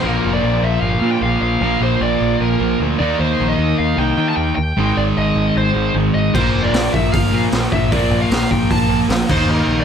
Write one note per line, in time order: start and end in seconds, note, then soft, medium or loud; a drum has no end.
0.03 0.19 A#1 medium
0.03 1.02 A#2 medium
0.03 1.02 F3 medium
0.03 0.31 A#4 medium
0.07 1.02 A#3 loud
0.25 0.39 F1 medium
0.33 0.64 D5 medium
0.44 0.58 A#1 medium
0.62 0.77 A#1 medium
0.62 0.80 E5 medium
0.81 0.96 G1 medium
0.81 1.11 F5 medium
1.02 1.16 A#2 medium
1.02 1.22 F3 medium
1.02 1.25 A#3 medium
1.06 1.21 A#2 medium
1.11 1.22 G5 medium
1.21 1.36 A#1 medium
1.21 1.61 A#2 medium
1.21 1.62 F3 medium
1.21 1.41 F5 loud
1.26 1.65 A#3 medium
1.42 1.56 A#1 medium
1.42 1.79 F5 medium
1.61 1.76 A#1 loud
1.61 2.59 A#2 medium
1.61 2.60 F3 medium
1.65 2.58 A#3 medium
1.81 1.95 A#1 medium
1.81 2.02 C5 medium
2.01 2.15 A#1 medium
2.01 2.43 D5 medium
2.21 2.35 A#1 medium
2.41 2.55 A#1 medium
2.41 2.78 A#4 medium
2.59 2.74 A#1 medium
2.59 2.80 F3 medium
2.59 2.79 A#3 medium
2.64 2.78 A#2 medium
2.79 2.95 D2 medium
2.79 2.98 A#2 medium
2.79 2.99 F3 medium
2.83 2.99 A#3 loud
2.98 3.14 D#2 medium
2.98 3.96 D#3 medium
2.98 3.97 A#3 medium
2.98 4.00 D#4 medium
2.98 3.18 D5 medium
3.19 3.34 D#2 medium
3.19 3.49 C5 medium
3.40 3.54 A#1 medium
3.49 3.77 D#5 loud
3.58 3.73 D#2 loud
3.78 3.94 D#2 medium
3.78 3.98 F5 loud
3.97 4.12 C2 medium
3.97 4.16 D#3 medium
3.97 4.18 A#3 medium
3.97 4.16 D#4 medium
3.97 4.29 G5 loud
4.17 4.32 D#3 medium
4.17 4.57 D#3 medium
4.17 4.57 A#3 medium
4.17 4.56 D#4 medium
4.29 4.36 A5 loud
4.36 4.51 D#2 loud
4.36 4.54 G5 loud
4.56 4.72 D#2 medium
4.56 4.97 G5 loud
4.77 4.91 G#1 medium
4.77 5.74 G#2 loud
4.77 5.74 D#3 medium
4.77 5.73 G#3 loud
4.97 5.11 G#1 medium
4.97 5.03 D5 medium
5.17 5.31 G#1 loud
5.17 5.54 D#5 medium
5.35 5.50 G#1 medium
5.56 5.70 G#1 medium
5.56 5.93 C5 medium
5.74 5.89 G#1 medium
5.74 5.93 G#2 medium
5.74 5.94 D#3 medium
5.74 5.93 G#3 medium
5.94 6.09 G#1 medium
5.94 6.33 G#2 medium
5.94 6.33 D#3 medium
5.94 6.35 G#3 medium
6.14 6.29 G#1 medium
6.14 6.33 D#5 medium
6.34 6.49 A#1 medium
6.34 7.31 A#2 loud
6.34 7.32 F3 loud
6.34 7.32 A#3 loud
6.34 6.65 C5 medium
6.34 kick loud
6.34 crash medium
6.54 6.68 F1 medium
6.63 6.93 D5 loud
6.73 6.87 A#1 loud
6.73 snare loud
6.73 open hi-hat medium
6.94 7.08 A#1 medium
6.94 7.12 E5 medium
6.94 kick medium
7.12 7.27 G1 medium
7.12 7.42 F5 medium
7.12 kick loud
7.12 open hi-hat medium
7.32 7.47 A#2 medium
7.32 7.50 A#2 medium
7.32 7.52 F3 medium
7.32 7.54 A#3 medium
7.51 7.66 A#1 medium
7.51 7.89 A#2 medium
7.51 7.91 F3 medium
7.51 7.94 A#3 medium
7.51 snare loud
7.51 open hi-hat medium
7.72 7.86 A#1 medium
7.72 7.92 E5 medium
7.72 kick medium
7.90 8.06 A#1 medium
7.90 8.88 A#2 medium
7.90 8.89 F3 medium
7.90 8.21 D5 medium
7.90 kick loud
7.90 open hi-hat soft
7.94 8.87 A#3 medium
8.10 8.25 A#1 medium
8.22 8.52 F5 medium
8.31 8.45 A#1 loud
8.31 snare loud
8.31 open hi-hat medium
8.51 8.65 A#1 medium
8.51 8.71 G5 loud
8.51 kick medium
8.71 8.85 A#1 medium
8.71 8.98 A5 loud
8.71 kick loud
8.71 open hi-hat medium
8.88 9.04 A#1 medium
8.88 9.07 A#2 medium
8.88 9.08 F3 medium
8.88 9.07 A#3 medium
9.09 9.23 A#1 medium
9.09 9.27 A#2 medium
9.09 9.28 F3 medium
9.09 9.29 A#3 medium
9.09 snare loud
9.09 open hi-hat medium
9.28 9.43 D#2 medium
9.28 9.85 D#3 medium
9.28 9.85 A#3 medium
9.28 9.85 D#4 loud
9.28 9.50 C5 medium
9.28 kick loud
9.28 crash medium
9.47 9.62 D#2 medium
9.52 9.80 A#4 medium
9.68 9.82 A#1 medium
9.80 9.85 D5 loud